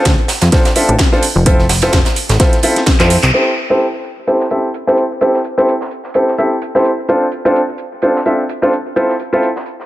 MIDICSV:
0, 0, Header, 1, 4, 480
1, 0, Start_track
1, 0, Key_signature, 0, "minor"
1, 0, Tempo, 468750
1, 1496, Time_signature, 4, 2, 24, 8
1, 10096, End_track
2, 0, Start_track
2, 0, Title_t, "Upright piano"
2, 0, Program_c, 0, 0
2, 535, Note_on_c, 0, 60, 75
2, 535, Note_on_c, 0, 62, 66
2, 535, Note_on_c, 0, 72, 85
2, 536, Note_on_c, 0, 65, 66
2, 536, Note_on_c, 0, 69, 66
2, 698, Note_off_c, 0, 60, 0
2, 698, Note_off_c, 0, 62, 0
2, 698, Note_off_c, 0, 65, 0
2, 698, Note_off_c, 0, 69, 0
2, 698, Note_off_c, 0, 72, 0
2, 776, Note_on_c, 0, 60, 77
2, 777, Note_on_c, 0, 62, 68
2, 777, Note_on_c, 0, 65, 66
2, 777, Note_on_c, 0, 69, 69
2, 777, Note_on_c, 0, 76, 85
2, 938, Note_off_c, 0, 60, 0
2, 938, Note_off_c, 0, 62, 0
2, 938, Note_off_c, 0, 65, 0
2, 938, Note_off_c, 0, 69, 0
2, 939, Note_off_c, 0, 76, 0
2, 1150, Note_on_c, 0, 60, 83
2, 1150, Note_on_c, 0, 65, 78
2, 1151, Note_on_c, 0, 62, 74
2, 1151, Note_on_c, 0, 69, 76
2, 1151, Note_on_c, 0, 72, 94
2, 1244, Note_off_c, 0, 60, 0
2, 1244, Note_off_c, 0, 62, 0
2, 1244, Note_off_c, 0, 65, 0
2, 1244, Note_off_c, 0, 69, 0
2, 1244, Note_off_c, 0, 72, 0
2, 1496, Note_on_c, 0, 64, 74
2, 1496, Note_on_c, 0, 65, 74
2, 1497, Note_on_c, 0, 60, 88
2, 1497, Note_on_c, 0, 69, 81
2, 1497, Note_on_c, 0, 72, 89
2, 1658, Note_off_c, 0, 64, 0
2, 1658, Note_off_c, 0, 65, 0
2, 1658, Note_off_c, 0, 72, 0
2, 1659, Note_off_c, 0, 60, 0
2, 1659, Note_off_c, 0, 69, 0
2, 1870, Note_on_c, 0, 60, 87
2, 1870, Note_on_c, 0, 64, 83
2, 1870, Note_on_c, 0, 65, 80
2, 1870, Note_on_c, 0, 69, 83
2, 1870, Note_on_c, 0, 72, 102
2, 2012, Note_off_c, 0, 60, 0
2, 2012, Note_off_c, 0, 64, 0
2, 2012, Note_off_c, 0, 65, 0
2, 2012, Note_off_c, 0, 69, 0
2, 2012, Note_off_c, 0, 72, 0
2, 2455, Note_on_c, 0, 65, 69
2, 2455, Note_on_c, 0, 72, 83
2, 2456, Note_on_c, 0, 60, 71
2, 2456, Note_on_c, 0, 64, 67
2, 2456, Note_on_c, 0, 69, 66
2, 2618, Note_off_c, 0, 60, 0
2, 2618, Note_off_c, 0, 64, 0
2, 2618, Note_off_c, 0, 65, 0
2, 2618, Note_off_c, 0, 69, 0
2, 2618, Note_off_c, 0, 72, 0
2, 2695, Note_on_c, 0, 60, 77
2, 2695, Note_on_c, 0, 64, 68
2, 2695, Note_on_c, 0, 65, 69
2, 2695, Note_on_c, 0, 69, 73
2, 2695, Note_on_c, 0, 76, 82
2, 2858, Note_off_c, 0, 60, 0
2, 2858, Note_off_c, 0, 64, 0
2, 2858, Note_off_c, 0, 65, 0
2, 2858, Note_off_c, 0, 69, 0
2, 2858, Note_off_c, 0, 76, 0
2, 3069, Note_on_c, 0, 60, 88
2, 3069, Note_on_c, 0, 64, 76
2, 3069, Note_on_c, 0, 65, 74
2, 3069, Note_on_c, 0, 69, 74
2, 3069, Note_on_c, 0, 72, 94
2, 3211, Note_off_c, 0, 60, 0
2, 3211, Note_off_c, 0, 64, 0
2, 3211, Note_off_c, 0, 65, 0
2, 3211, Note_off_c, 0, 69, 0
2, 3212, Note_off_c, 0, 72, 0
2, 3415, Note_on_c, 0, 60, 77
2, 3415, Note_on_c, 0, 64, 70
2, 3415, Note_on_c, 0, 67, 70
2, 3415, Note_on_c, 0, 69, 66
2, 3415, Note_on_c, 0, 72, 85
2, 3578, Note_off_c, 0, 60, 0
2, 3578, Note_off_c, 0, 64, 0
2, 3578, Note_off_c, 0, 67, 0
2, 3578, Note_off_c, 0, 69, 0
2, 3578, Note_off_c, 0, 72, 0
2, 3789, Note_on_c, 0, 64, 74
2, 3790, Note_on_c, 0, 60, 78
2, 3790, Note_on_c, 0, 67, 73
2, 3790, Note_on_c, 0, 69, 69
2, 3790, Note_on_c, 0, 72, 91
2, 3932, Note_off_c, 0, 60, 0
2, 3932, Note_off_c, 0, 64, 0
2, 3932, Note_off_c, 0, 67, 0
2, 3932, Note_off_c, 0, 69, 0
2, 3932, Note_off_c, 0, 72, 0
2, 4376, Note_on_c, 0, 60, 65
2, 4376, Note_on_c, 0, 64, 59
2, 4376, Note_on_c, 0, 67, 59
2, 4376, Note_on_c, 0, 69, 60
2, 4376, Note_on_c, 0, 72, 72
2, 4538, Note_off_c, 0, 60, 0
2, 4538, Note_off_c, 0, 64, 0
2, 4538, Note_off_c, 0, 67, 0
2, 4538, Note_off_c, 0, 69, 0
2, 4538, Note_off_c, 0, 72, 0
2, 4617, Note_on_c, 0, 60, 68
2, 4617, Note_on_c, 0, 64, 62
2, 4617, Note_on_c, 0, 67, 63
2, 4617, Note_on_c, 0, 69, 61
2, 4617, Note_on_c, 0, 76, 73
2, 4778, Note_off_c, 0, 60, 0
2, 4779, Note_off_c, 0, 64, 0
2, 4779, Note_off_c, 0, 67, 0
2, 4779, Note_off_c, 0, 69, 0
2, 4779, Note_off_c, 0, 76, 0
2, 4990, Note_on_c, 0, 60, 78
2, 4990, Note_on_c, 0, 67, 72
2, 4990, Note_on_c, 0, 69, 72
2, 4990, Note_on_c, 0, 72, 86
2, 4991, Note_on_c, 0, 64, 69
2, 5132, Note_off_c, 0, 60, 0
2, 5132, Note_off_c, 0, 64, 0
2, 5132, Note_off_c, 0, 67, 0
2, 5132, Note_off_c, 0, 69, 0
2, 5132, Note_off_c, 0, 72, 0
2, 5337, Note_on_c, 0, 60, 78
2, 5337, Note_on_c, 0, 64, 66
2, 5337, Note_on_c, 0, 67, 74
2, 5337, Note_on_c, 0, 69, 70
2, 5337, Note_on_c, 0, 72, 82
2, 5498, Note_off_c, 0, 64, 0
2, 5499, Note_off_c, 0, 60, 0
2, 5499, Note_off_c, 0, 67, 0
2, 5499, Note_off_c, 0, 69, 0
2, 5499, Note_off_c, 0, 72, 0
2, 5710, Note_on_c, 0, 60, 84
2, 5710, Note_on_c, 0, 64, 77
2, 5710, Note_on_c, 0, 67, 73
2, 5710, Note_on_c, 0, 69, 72
2, 5710, Note_on_c, 0, 72, 89
2, 5852, Note_off_c, 0, 60, 0
2, 5852, Note_off_c, 0, 64, 0
2, 5852, Note_off_c, 0, 67, 0
2, 5852, Note_off_c, 0, 69, 0
2, 5852, Note_off_c, 0, 72, 0
2, 6296, Note_on_c, 0, 64, 61
2, 6296, Note_on_c, 0, 67, 60
2, 6296, Note_on_c, 0, 72, 70
2, 6297, Note_on_c, 0, 60, 66
2, 6297, Note_on_c, 0, 69, 63
2, 6458, Note_off_c, 0, 60, 0
2, 6458, Note_off_c, 0, 64, 0
2, 6458, Note_off_c, 0, 67, 0
2, 6458, Note_off_c, 0, 69, 0
2, 6458, Note_off_c, 0, 72, 0
2, 6536, Note_on_c, 0, 64, 62
2, 6536, Note_on_c, 0, 69, 63
2, 6537, Note_on_c, 0, 60, 69
2, 6537, Note_on_c, 0, 67, 61
2, 6537, Note_on_c, 0, 76, 79
2, 6698, Note_off_c, 0, 64, 0
2, 6698, Note_off_c, 0, 67, 0
2, 6698, Note_off_c, 0, 69, 0
2, 6698, Note_off_c, 0, 76, 0
2, 6699, Note_off_c, 0, 60, 0
2, 6910, Note_on_c, 0, 64, 70
2, 6911, Note_on_c, 0, 60, 72
2, 6911, Note_on_c, 0, 67, 68
2, 6911, Note_on_c, 0, 69, 69
2, 6911, Note_on_c, 0, 72, 87
2, 7052, Note_off_c, 0, 60, 0
2, 7052, Note_off_c, 0, 64, 0
2, 7053, Note_off_c, 0, 67, 0
2, 7053, Note_off_c, 0, 69, 0
2, 7053, Note_off_c, 0, 72, 0
2, 7256, Note_on_c, 0, 60, 74
2, 7256, Note_on_c, 0, 62, 70
2, 7256, Note_on_c, 0, 65, 74
2, 7256, Note_on_c, 0, 69, 69
2, 7256, Note_on_c, 0, 72, 88
2, 7418, Note_off_c, 0, 60, 0
2, 7418, Note_off_c, 0, 62, 0
2, 7418, Note_off_c, 0, 65, 0
2, 7418, Note_off_c, 0, 69, 0
2, 7418, Note_off_c, 0, 72, 0
2, 7630, Note_on_c, 0, 60, 82
2, 7630, Note_on_c, 0, 62, 78
2, 7630, Note_on_c, 0, 65, 73
2, 7630, Note_on_c, 0, 69, 72
2, 7630, Note_on_c, 0, 72, 93
2, 7772, Note_off_c, 0, 60, 0
2, 7772, Note_off_c, 0, 62, 0
2, 7772, Note_off_c, 0, 65, 0
2, 7772, Note_off_c, 0, 69, 0
2, 7772, Note_off_c, 0, 72, 0
2, 8217, Note_on_c, 0, 60, 69
2, 8217, Note_on_c, 0, 62, 62
2, 8217, Note_on_c, 0, 65, 62
2, 8217, Note_on_c, 0, 69, 61
2, 8217, Note_on_c, 0, 72, 70
2, 8379, Note_off_c, 0, 60, 0
2, 8379, Note_off_c, 0, 62, 0
2, 8379, Note_off_c, 0, 65, 0
2, 8379, Note_off_c, 0, 69, 0
2, 8379, Note_off_c, 0, 72, 0
2, 8456, Note_on_c, 0, 60, 69
2, 8456, Note_on_c, 0, 62, 61
2, 8456, Note_on_c, 0, 65, 61
2, 8456, Note_on_c, 0, 76, 72
2, 8457, Note_on_c, 0, 69, 63
2, 8618, Note_off_c, 0, 60, 0
2, 8618, Note_off_c, 0, 62, 0
2, 8618, Note_off_c, 0, 65, 0
2, 8618, Note_off_c, 0, 69, 0
2, 8618, Note_off_c, 0, 76, 0
2, 8829, Note_on_c, 0, 62, 72
2, 8829, Note_on_c, 0, 65, 68
2, 8829, Note_on_c, 0, 69, 67
2, 8829, Note_on_c, 0, 72, 82
2, 8830, Note_on_c, 0, 60, 76
2, 8923, Note_off_c, 0, 60, 0
2, 8923, Note_off_c, 0, 62, 0
2, 8923, Note_off_c, 0, 65, 0
2, 8923, Note_off_c, 0, 69, 0
2, 8923, Note_off_c, 0, 72, 0
2, 9176, Note_on_c, 0, 60, 76
2, 9176, Note_on_c, 0, 64, 69
2, 9176, Note_on_c, 0, 65, 69
2, 9176, Note_on_c, 0, 69, 70
2, 9176, Note_on_c, 0, 72, 86
2, 9338, Note_off_c, 0, 60, 0
2, 9338, Note_off_c, 0, 64, 0
2, 9338, Note_off_c, 0, 65, 0
2, 9338, Note_off_c, 0, 69, 0
2, 9338, Note_off_c, 0, 72, 0
2, 9550, Note_on_c, 0, 60, 76
2, 9550, Note_on_c, 0, 64, 75
2, 9550, Note_on_c, 0, 65, 72
2, 9550, Note_on_c, 0, 69, 71
2, 9550, Note_on_c, 0, 72, 84
2, 9692, Note_off_c, 0, 60, 0
2, 9692, Note_off_c, 0, 64, 0
2, 9692, Note_off_c, 0, 65, 0
2, 9692, Note_off_c, 0, 69, 0
2, 9692, Note_off_c, 0, 72, 0
2, 10096, End_track
3, 0, Start_track
3, 0, Title_t, "Analog synth bass"
3, 0, Program_c, 1, 38
3, 55, Note_on_c, 1, 38, 95
3, 160, Note_off_c, 1, 38, 0
3, 430, Note_on_c, 1, 41, 88
3, 513, Note_off_c, 1, 41, 0
3, 910, Note_on_c, 1, 33, 92
3, 992, Note_off_c, 1, 33, 0
3, 1389, Note_on_c, 1, 29, 99
3, 1938, Note_off_c, 1, 29, 0
3, 1976, Note_on_c, 1, 29, 95
3, 2080, Note_off_c, 1, 29, 0
3, 2349, Note_on_c, 1, 33, 89
3, 2432, Note_off_c, 1, 33, 0
3, 3069, Note_on_c, 1, 41, 82
3, 3250, Note_off_c, 1, 41, 0
3, 3309, Note_on_c, 1, 36, 102
3, 3392, Note_off_c, 1, 36, 0
3, 10096, End_track
4, 0, Start_track
4, 0, Title_t, "Drums"
4, 53, Note_on_c, 9, 38, 121
4, 55, Note_on_c, 9, 42, 80
4, 56, Note_off_c, 9, 42, 0
4, 56, Note_on_c, 9, 36, 95
4, 56, Note_on_c, 9, 42, 80
4, 57, Note_off_c, 9, 38, 0
4, 57, Note_on_c, 9, 38, 110
4, 158, Note_off_c, 9, 36, 0
4, 159, Note_off_c, 9, 38, 0
4, 159, Note_off_c, 9, 42, 0
4, 290, Note_on_c, 9, 38, 103
4, 295, Note_on_c, 9, 46, 82
4, 296, Note_on_c, 9, 42, 77
4, 392, Note_off_c, 9, 38, 0
4, 397, Note_off_c, 9, 46, 0
4, 398, Note_off_c, 9, 42, 0
4, 424, Note_on_c, 9, 42, 86
4, 426, Note_on_c, 9, 38, 107
4, 429, Note_off_c, 9, 42, 0
4, 429, Note_on_c, 9, 42, 51
4, 528, Note_off_c, 9, 38, 0
4, 531, Note_off_c, 9, 42, 0
4, 535, Note_on_c, 9, 42, 81
4, 536, Note_off_c, 9, 42, 0
4, 536, Note_on_c, 9, 36, 105
4, 536, Note_on_c, 9, 42, 70
4, 541, Note_on_c, 9, 38, 104
4, 638, Note_off_c, 9, 36, 0
4, 638, Note_off_c, 9, 42, 0
4, 643, Note_off_c, 9, 38, 0
4, 667, Note_on_c, 9, 42, 74
4, 669, Note_off_c, 9, 42, 0
4, 669, Note_on_c, 9, 42, 37
4, 672, Note_on_c, 9, 38, 102
4, 772, Note_off_c, 9, 42, 0
4, 775, Note_off_c, 9, 38, 0
4, 775, Note_on_c, 9, 46, 101
4, 777, Note_on_c, 9, 42, 65
4, 878, Note_off_c, 9, 46, 0
4, 879, Note_off_c, 9, 42, 0
4, 910, Note_on_c, 9, 42, 52
4, 1010, Note_on_c, 9, 38, 110
4, 1013, Note_off_c, 9, 42, 0
4, 1013, Note_on_c, 9, 42, 87
4, 1016, Note_off_c, 9, 42, 0
4, 1016, Note_on_c, 9, 36, 96
4, 1016, Note_on_c, 9, 42, 81
4, 1018, Note_off_c, 9, 38, 0
4, 1018, Note_on_c, 9, 38, 109
4, 1118, Note_off_c, 9, 36, 0
4, 1118, Note_off_c, 9, 42, 0
4, 1120, Note_off_c, 9, 38, 0
4, 1148, Note_on_c, 9, 38, 41
4, 1250, Note_off_c, 9, 38, 0
4, 1254, Note_on_c, 9, 42, 65
4, 1256, Note_on_c, 9, 46, 84
4, 1357, Note_off_c, 9, 42, 0
4, 1359, Note_off_c, 9, 46, 0
4, 1495, Note_on_c, 9, 42, 82
4, 1496, Note_on_c, 9, 36, 101
4, 1499, Note_off_c, 9, 42, 0
4, 1499, Note_on_c, 9, 42, 91
4, 1598, Note_off_c, 9, 36, 0
4, 1601, Note_off_c, 9, 42, 0
4, 1626, Note_on_c, 9, 38, 38
4, 1728, Note_off_c, 9, 38, 0
4, 1734, Note_on_c, 9, 42, 77
4, 1735, Note_on_c, 9, 38, 112
4, 1735, Note_on_c, 9, 46, 97
4, 1836, Note_off_c, 9, 42, 0
4, 1837, Note_off_c, 9, 46, 0
4, 1838, Note_off_c, 9, 38, 0
4, 1861, Note_on_c, 9, 42, 79
4, 1870, Note_on_c, 9, 38, 99
4, 1964, Note_off_c, 9, 42, 0
4, 1972, Note_off_c, 9, 38, 0
4, 1973, Note_on_c, 9, 38, 108
4, 1975, Note_on_c, 9, 42, 80
4, 1976, Note_on_c, 9, 36, 101
4, 1977, Note_off_c, 9, 38, 0
4, 1977, Note_on_c, 9, 38, 120
4, 1978, Note_off_c, 9, 42, 0
4, 1978, Note_on_c, 9, 42, 72
4, 2078, Note_off_c, 9, 36, 0
4, 2080, Note_off_c, 9, 38, 0
4, 2081, Note_off_c, 9, 42, 0
4, 2101, Note_on_c, 9, 38, 109
4, 2109, Note_on_c, 9, 42, 36
4, 2110, Note_off_c, 9, 42, 0
4, 2110, Note_on_c, 9, 42, 79
4, 2203, Note_off_c, 9, 38, 0
4, 2213, Note_off_c, 9, 42, 0
4, 2215, Note_on_c, 9, 46, 85
4, 2217, Note_on_c, 9, 42, 72
4, 2317, Note_off_c, 9, 46, 0
4, 2320, Note_off_c, 9, 42, 0
4, 2349, Note_on_c, 9, 42, 55
4, 2352, Note_off_c, 9, 42, 0
4, 2352, Note_on_c, 9, 38, 98
4, 2352, Note_on_c, 9, 42, 74
4, 2454, Note_off_c, 9, 38, 0
4, 2454, Note_off_c, 9, 42, 0
4, 2455, Note_on_c, 9, 42, 80
4, 2456, Note_on_c, 9, 36, 109
4, 2458, Note_on_c, 9, 38, 109
4, 2460, Note_off_c, 9, 42, 0
4, 2460, Note_on_c, 9, 42, 75
4, 2558, Note_off_c, 9, 36, 0
4, 2560, Note_off_c, 9, 38, 0
4, 2562, Note_off_c, 9, 42, 0
4, 2589, Note_on_c, 9, 38, 37
4, 2590, Note_on_c, 9, 42, 38
4, 2691, Note_off_c, 9, 38, 0
4, 2691, Note_off_c, 9, 42, 0
4, 2691, Note_on_c, 9, 42, 58
4, 2695, Note_on_c, 9, 46, 96
4, 2793, Note_off_c, 9, 42, 0
4, 2797, Note_off_c, 9, 46, 0
4, 2829, Note_on_c, 9, 42, 54
4, 2831, Note_on_c, 9, 38, 35
4, 2932, Note_off_c, 9, 38, 0
4, 2932, Note_off_c, 9, 42, 0
4, 2932, Note_on_c, 9, 38, 120
4, 2936, Note_on_c, 9, 36, 101
4, 2936, Note_on_c, 9, 42, 74
4, 2938, Note_off_c, 9, 38, 0
4, 2938, Note_on_c, 9, 38, 117
4, 2939, Note_off_c, 9, 42, 0
4, 2939, Note_on_c, 9, 42, 88
4, 3038, Note_off_c, 9, 36, 0
4, 3041, Note_off_c, 9, 38, 0
4, 3041, Note_off_c, 9, 42, 0
4, 3067, Note_on_c, 9, 38, 47
4, 3070, Note_on_c, 9, 39, 66
4, 3070, Note_on_c, 9, 42, 37
4, 3169, Note_off_c, 9, 38, 0
4, 3172, Note_off_c, 9, 39, 0
4, 3172, Note_off_c, 9, 42, 0
4, 3176, Note_on_c, 9, 46, 86
4, 3180, Note_on_c, 9, 42, 65
4, 3279, Note_off_c, 9, 46, 0
4, 3283, Note_off_c, 9, 42, 0
4, 3311, Note_on_c, 9, 39, 100
4, 3311, Note_on_c, 9, 42, 37
4, 3413, Note_off_c, 9, 39, 0
4, 3413, Note_off_c, 9, 42, 0
4, 3414, Note_on_c, 9, 42, 72
4, 3416, Note_on_c, 9, 49, 76
4, 3517, Note_off_c, 9, 42, 0
4, 3518, Note_off_c, 9, 49, 0
4, 3662, Note_on_c, 9, 42, 67
4, 3764, Note_off_c, 9, 42, 0
4, 3898, Note_on_c, 9, 42, 78
4, 4001, Note_off_c, 9, 42, 0
4, 4136, Note_on_c, 9, 42, 64
4, 4238, Note_off_c, 9, 42, 0
4, 4376, Note_on_c, 9, 42, 77
4, 4479, Note_off_c, 9, 42, 0
4, 4506, Note_on_c, 9, 38, 48
4, 4608, Note_off_c, 9, 38, 0
4, 4613, Note_on_c, 9, 42, 50
4, 4715, Note_off_c, 9, 42, 0
4, 4857, Note_on_c, 9, 42, 79
4, 4959, Note_off_c, 9, 42, 0
4, 4989, Note_on_c, 9, 38, 34
4, 5092, Note_off_c, 9, 38, 0
4, 5095, Note_on_c, 9, 42, 61
4, 5197, Note_off_c, 9, 42, 0
4, 5335, Note_on_c, 9, 42, 74
4, 5437, Note_off_c, 9, 42, 0
4, 5464, Note_on_c, 9, 38, 34
4, 5566, Note_off_c, 9, 38, 0
4, 5575, Note_on_c, 9, 42, 55
4, 5678, Note_off_c, 9, 42, 0
4, 5822, Note_on_c, 9, 42, 75
4, 5925, Note_off_c, 9, 42, 0
4, 5947, Note_on_c, 9, 38, 52
4, 6050, Note_off_c, 9, 38, 0
4, 6052, Note_on_c, 9, 42, 55
4, 6155, Note_off_c, 9, 42, 0
4, 6182, Note_on_c, 9, 38, 36
4, 6284, Note_off_c, 9, 38, 0
4, 6289, Note_on_c, 9, 42, 80
4, 6392, Note_off_c, 9, 42, 0
4, 6428, Note_on_c, 9, 38, 32
4, 6531, Note_off_c, 9, 38, 0
4, 6535, Note_on_c, 9, 42, 60
4, 6637, Note_off_c, 9, 42, 0
4, 6775, Note_on_c, 9, 42, 79
4, 6877, Note_off_c, 9, 42, 0
4, 6913, Note_on_c, 9, 38, 41
4, 7012, Note_on_c, 9, 42, 64
4, 7016, Note_off_c, 9, 38, 0
4, 7114, Note_off_c, 9, 42, 0
4, 7256, Note_on_c, 9, 42, 72
4, 7359, Note_off_c, 9, 42, 0
4, 7493, Note_on_c, 9, 42, 58
4, 7595, Note_off_c, 9, 42, 0
4, 7742, Note_on_c, 9, 42, 85
4, 7844, Note_off_c, 9, 42, 0
4, 7967, Note_on_c, 9, 42, 63
4, 8069, Note_off_c, 9, 42, 0
4, 8211, Note_on_c, 9, 42, 85
4, 8314, Note_off_c, 9, 42, 0
4, 8352, Note_on_c, 9, 38, 44
4, 8455, Note_off_c, 9, 38, 0
4, 8455, Note_on_c, 9, 42, 63
4, 8557, Note_off_c, 9, 42, 0
4, 8698, Note_on_c, 9, 42, 75
4, 8800, Note_off_c, 9, 42, 0
4, 8826, Note_on_c, 9, 38, 36
4, 8929, Note_off_c, 9, 38, 0
4, 8942, Note_on_c, 9, 42, 59
4, 9044, Note_off_c, 9, 42, 0
4, 9177, Note_on_c, 9, 42, 79
4, 9279, Note_off_c, 9, 42, 0
4, 9302, Note_on_c, 9, 38, 35
4, 9404, Note_off_c, 9, 38, 0
4, 9416, Note_on_c, 9, 42, 58
4, 9518, Note_off_c, 9, 42, 0
4, 9655, Note_on_c, 9, 42, 72
4, 9757, Note_off_c, 9, 42, 0
4, 9789, Note_on_c, 9, 38, 51
4, 9890, Note_on_c, 9, 42, 58
4, 9891, Note_off_c, 9, 38, 0
4, 9992, Note_off_c, 9, 42, 0
4, 10032, Note_on_c, 9, 38, 34
4, 10096, Note_off_c, 9, 38, 0
4, 10096, End_track
0, 0, End_of_file